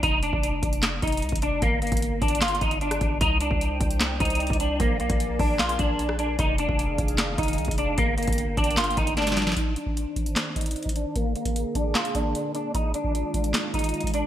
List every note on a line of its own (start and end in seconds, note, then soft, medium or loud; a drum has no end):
0.03 0.32 F1 loud
0.03 0.21 D#4 loud
0.03 kick loud
0.03 closed hi-hat medium
0.23 0.98 D4 medium
0.23 closed hi-hat medium
0.33 0.61 F1 loud
0.33 kick medium
0.43 closed hi-hat medium
0.63 1.01 F1 loud
0.63 kick loud
0.63 closed hi-hat medium
0.73 closed hi-hat medium
0.83 snare loud
0.83 clap loud
0.83 closed hi-hat medium
1.02 1.24 F1 loud
1.02 1.40 D#4 medium
1.02 kick medium
1.02 closed hi-hat medium
1.07 closed hi-hat medium
1.12 closed hi-hat medium
1.17 closed hi-hat medium
1.22 1.32 C2 loud
1.22 closed hi-hat soft
1.29 1.61 F1 loud
1.29 kick medium
1.29 closed hi-hat medium
1.36 closed hi-hat medium
1.42 1.61 D4 medium
1.42 closed hi-hat medium
1.62 1.91 G1 loud
1.62 1.80 A#3 medium
1.62 kick loud
1.62 closed hi-hat medium
1.82 2.19 A#3 medium
1.82 closed hi-hat soft
1.87 closed hi-hat medium
1.92 2.20 G1 loud
1.92 kick loud
1.92 closed hi-hat medium
1.97 closed hi-hat medium
2.02 closed hi-hat medium
2.22 2.60 G1 loud
2.22 2.40 D4 medium
2.22 kick loud
2.22 closed hi-hat soft
2.28 closed hi-hat medium
2.35 closed hi-hat medium
2.41 2.60 F4 medium
2.41 snare loud
2.41 clap loud
2.41 closed hi-hat medium
2.48 closed hi-hat medium
2.55 closed hi-hat soft
2.61 2.99 G1 loud
2.61 2.80 D#4 medium
2.61 kick medium
2.61 closed hi-hat medium
2.71 closed hi-hat medium
2.81 3.19 D4 medium
2.81 closed hi-hat soft
2.91 cross-stick loud
2.91 closed hi-hat medium
3.01 3.20 G1 loud
3.01 kick loud
3.01 closed hi-hat medium
3.21 3.50 C2 loud
3.21 3.39 D#4 loud
3.21 4.78 C5 medium
3.21 6.36 D5 medium
3.21 4.78 G5 loud
3.21 kick loud
3.21 closed hi-hat medium
3.41 4.16 D4 medium
3.41 closed hi-hat medium
3.51 3.79 C2 loud
3.51 kick medium
3.61 closed hi-hat medium
3.80 4.19 C2 loud
3.80 kick loud
3.80 closed hi-hat medium
3.91 closed hi-hat medium
4.00 snare loud
4.00 clap loud
4.00 closed hi-hat medium
4.20 4.49 C2 loud
4.20 4.58 D#4 medium
4.20 kick medium
4.20 closed hi-hat medium
4.25 closed hi-hat medium
4.30 closed hi-hat medium
4.35 closed hi-hat medium
4.40 closed hi-hat soft
4.47 4.79 C2 loud
4.47 kick medium
4.47 closed hi-hat medium
4.53 closed hi-hat medium
4.60 4.78 D4 medium
4.60 closed hi-hat medium
4.80 5.08 A#1 loud
4.80 4.98 A#3 medium
4.80 6.37 A#4 medium
4.80 6.37 G#5 medium
4.80 kick loud
4.80 closed hi-hat medium
5.00 5.37 A#3 medium
5.00 closed hi-hat soft
5.10 5.38 A#1 loud
5.10 kick medium
5.10 closed hi-hat medium
5.20 closed hi-hat medium
5.39 5.78 A#1 loud
5.39 5.58 D4 medium
5.39 kick loud
5.39 open hi-hat medium
5.59 5.78 F4 medium
5.59 snare loud
5.59 clap loud
5.59 closed hi-hat medium
5.69 closed hi-hat medium
5.79 6.36 A#1 loud
5.79 6.17 D4 medium
5.79 kick medium
5.79 closed hi-hat medium
5.99 closed hi-hat medium
6.09 cross-stick loud
6.19 6.37 D4 medium
6.19 closed hi-hat medium
6.39 6.67 F1 loud
6.39 7.96 D#3 medium
6.39 6.57 D#4 loud
6.39 7.96 G#4 medium
6.39 7.96 F5 loud
6.39 kick loud
6.39 closed hi-hat medium
6.58 7.34 D4 medium
6.58 closed hi-hat medium
6.69 6.97 F1 loud
6.69 kick medium
6.79 closed hi-hat medium
6.98 7.37 F1 loud
6.98 kick loud
6.98 closed hi-hat medium
7.08 closed hi-hat medium
7.18 snare loud
7.18 clap loud
7.18 closed hi-hat medium
7.38 7.60 F1 loud
7.38 7.76 D#4 medium
7.38 kick medium
7.38 closed hi-hat medium
7.43 closed hi-hat medium
7.48 closed hi-hat medium
7.53 closed hi-hat medium
7.58 7.68 C2 loud
7.58 closed hi-hat soft
7.65 7.97 F1 loud
7.65 kick medium
7.65 closed hi-hat medium
7.71 closed hi-hat medium
7.78 7.96 D4 medium
7.78 closed hi-hat medium
7.98 8.26 G1 loud
7.98 8.16 A#3 medium
7.98 9.55 D4 medium
7.98 9.55 A#4 medium
7.98 9.55 G5 loud
7.98 kick loud
7.98 closed hi-hat medium
8.18 8.55 A#3 medium
8.18 closed hi-hat soft
8.23 closed hi-hat medium
8.28 8.56 G1 loud
8.28 kick medium
8.28 closed hi-hat medium
8.33 closed hi-hat medium
8.38 closed hi-hat medium
8.57 8.95 G1 loud
8.57 8.76 D4 medium
8.57 kick loud
8.57 closed hi-hat soft
8.64 closed hi-hat medium
8.71 closed hi-hat medium
8.77 8.95 F4 medium
8.77 snare loud
8.77 clap loud
8.77 closed hi-hat medium
8.84 closed hi-hat medium
8.91 closed hi-hat soft
8.97 9.54 G1 loud
8.97 9.15 D#4 medium
8.97 kick medium
8.97 closed hi-hat medium
9.07 closed hi-hat medium
9.17 9.54 D4 medium
9.17 snare medium
9.17 closed hi-hat soft
9.22 snare medium
9.27 snare medium
9.27 closed hi-hat medium
9.32 snare medium
9.37 snare medium
9.37 closed hi-hat medium
9.42 snare medium
9.47 snare loud
9.52 snare loud
9.57 11.14 D#3 medium
9.57 11.14 C5 medium
9.57 11.14 D5 medium
9.57 kick loud
9.57 closed hi-hat medium
9.76 10.52 D4 medium
9.76 closed hi-hat medium
9.86 kick medium
9.97 closed hi-hat medium
10.16 kick medium
10.16 closed hi-hat medium
10.26 closed hi-hat medium
10.36 snare loud
10.36 clap medium
10.36 closed hi-hat medium
10.56 10.93 D#4 medium
10.56 kick medium
10.56 closed hi-hat medium
10.61 closed hi-hat medium
10.66 closed hi-hat medium
10.71 closed hi-hat medium
10.76 closed hi-hat soft
10.83 kick medium
10.83 closed hi-hat medium
10.89 closed hi-hat medium
10.96 11.14 D4 medium
10.96 closed hi-hat medium
11.16 12.73 D3 medium
11.16 12.73 A#3 medium
11.16 11.34 A#3 medium
11.16 12.73 G#4 medium
11.16 kick loud
11.16 closed hi-hat medium
11.36 11.73 A#3 medium
11.36 closed hi-hat soft
11.45 kick medium
11.45 closed hi-hat medium
11.56 closed hi-hat medium
11.75 11.94 D4 medium
11.75 kick loud
11.75 closed hi-hat medium
11.95 12.13 F4 medium
11.95 snare loud
11.95 clap medium
11.95 closed hi-hat soft
12.05 closed hi-hat medium
12.15 12.52 D4 medium
12.15 kick medium
12.15 closed hi-hat medium
12.35 closed hi-hat medium
12.55 12.73 D4 medium
12.55 closed hi-hat medium
12.74 14.27 D#3 medium
12.74 14.27 G#3 medium
12.74 12.93 D#4 loud
12.74 14.27 F4 medium
12.74 kick loud
12.74 closed hi-hat medium
12.94 13.70 D4 medium
12.94 closed hi-hat medium
13.04 kick medium
13.15 closed hi-hat medium
13.34 kick medium
13.34 closed hi-hat medium
13.44 closed hi-hat medium
13.54 snare loud
13.54 clap medium
13.54 closed hi-hat medium
13.74 14.11 D#4 medium
13.74 kick medium
13.74 closed hi-hat medium
13.79 closed hi-hat medium
13.84 closed hi-hat medium
13.89 closed hi-hat medium
13.94 closed hi-hat soft
14.01 kick medium
14.01 closed hi-hat medium
14.07 closed hi-hat medium
14.14 14.27 D4 medium
14.14 closed hi-hat medium